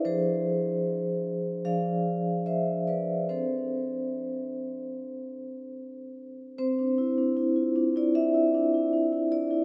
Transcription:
\new Staff \with { instrumentName = "Vibraphone" } { \time 4/4 \key c \major \tempo 4 = 74 << { <aes' c''>2 <d'' f''>4 <c'' e''>8 <b' d''>8 | <a' c''>2.~ <a' c''>8 r8 | c''4.~ c''16 d''16 e''4. d''8 | } \\ { <f d'>2 <f d' aes'>2 | <c' d'>1 | c'16 d'16 e'16 d'16 e'16 f'16 d'16 e'16 d'16 e'16 d'16 e'16 d'16 e'16 d'16 e'16 | } >> }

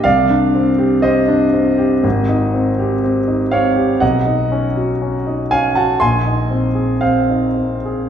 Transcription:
\new Staff \with { instrumentName = "Grand piano" } { \time 4/4 \key bes \dorian \tempo 4 = 60 << { <d'' f''>4 <c'' ees''>2 r8 <des'' f''>8 | <dis'' fis''>4. <f'' aes''>16 <fis'' a''>16 <aes'' c'''>4 <c'' f''>4 | } \\ { c,16 d'16 c'16 g'16 c'16 d'16 c'16 g'16 aes,,16 ees'16 c'16 g'16 c'16 ees'16 c'16 g'16 | b,,16 dis'16 cis'16 fis'16 cis'16 dis'16 cis'16 fis'16 bes,,16 ees'16 c'16 aes'16 c'16 ees'16 c'16 aes'16 | } >> }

